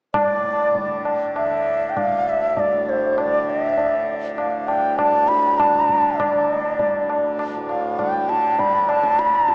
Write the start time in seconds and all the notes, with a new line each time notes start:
0.14 A2 D5, tabla na, tabla ge
0.75 D3, tabla tin, tabla ge
1.05 tabla na
1.36 D3 E5, tabla na
1.90 G5
1.97 F5, tabla na, tabla ge
2.01 D2
2.29 E5
2.57 D5, tabla tin, tabla ge
2.62 A2
2.89 C5
3.18 D5, tabla na
3.24 D3
3.50 E5
3.77 tabla tin
3.85 D3
4.38 F5, tabla na
4.46 D2
4.68 G5, tabla na
4.98 A5, tabla na, tabla ge
5.09 A2
5.28 B5, tabla te
5.59 A5, tabla na, tabla ge
5.71 D3
5.89 tabla ge
6.19 D5, tabla na, tabla ge
6.33 D3
6.79 tabla tin, tabla ge
6.95 D2
7.09 tabla na
7.39 tabla na
7.56 A2
7.69 F5, tabla na
7.99 G5, tabla na, tabla ge
8.17 D3
8.29 A5, tabla te
8.59 B5, tabla tin, tabla ge
8.79 D3
8.89 A5, tabla na
9.03 tabla ke
9.19 B5, tabla te
9.35 A#5
9.40 D2
9.48 A5, tabla te